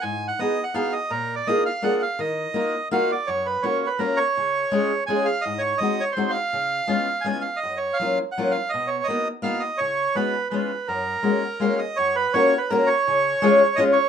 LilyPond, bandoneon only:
\new Staff \with { instrumentName = "Bandoneon" } { \time 3/4 \key ees \minor \tempo 4 = 166 \tuplet 3/2 { aes''4 ges''8 ees''4 ges''8 } f''8 ees''8 | \tuplet 3/2 { bes'4 d''8 } ees''8 f''8 ges''8 f''8 | ees''2 f''8 d''8 | \key fis \major cis''8 b'8 \tuplet 3/2 { cis''4 b'8 } ais'8 cis''8~ |
cis''2 gis''8 eis''8 | dis''8 cis''8 \tuplet 3/2 { dis''4 cis''8 } bis'8 eis''8~ | eis''2 gis''8 eis''8 | dis''8 cis''8 eis''8 r8 fis''8 eis''8 |
dis''8 cis''8 dis''8 r8 eis''8 dis''8 | cis''4 b'4 b'4 | ais'2 eis''8 dis''8 | cis''8 b'8 \tuplet 3/2 { cis''4 b'8 } ais'8 cis''8~ |
cis''2 dis''8 cis''8 | }